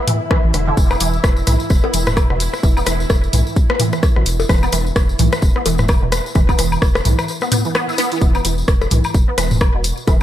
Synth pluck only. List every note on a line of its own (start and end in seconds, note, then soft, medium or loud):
0.07 0.13 E3 medium
0.31 0.39 E3 loud
0.54 0.59 D3 medium
0.67 0.73 D3 loud
0.77 0.85 E3 medium
0.91 0.95 B3 medium
1.01 1.04 E3 medium
1.47 1.52 E3 medium
1.84 1.88 B3 medium
1.94 1.99 E3 medium
2.30 2.33 B2 medium
2.63 2.71 E3 medium
2.77 2.81 B3 medium
2.87 2.90 E3 medium
3.33 3.38 E3 medium
3.70 3.74 B3 medium
3.80 3.85 E3 medium
4.16 4.19 B2 medium
4.49 4.57 E3 medium
4.63 4.67 B3 medium
4.73 4.76 E3 medium
5.19 5.25 E3 medium
5.56 5.60 B3 medium
5.66 5.71 E3 medium
6.02 6.05 B2 medium
6.35 6.43 E3 medium
6.49 6.53 B3 medium
6.59 6.62 E3 medium
7.05 7.11 E3 medium
7.42 7.46 B3 medium
7.52 7.57 B3 medium
7.65 7.69 E3 medium
7.75 7.78 B3 loud
7.88 7.91 E4 medium
7.98 8.06 B3 loud
8.12 8.16 E3 medium
8.22 8.30 E3 medium
8.35 8.39 B3 medium
8.45 8.48 E3 medium
8.91 8.97 E3 medium
9.28 9.32 B3 medium
9.38 9.43 E3 medium
9.74 9.77 B2 medium
10.08 10.16 E3 medium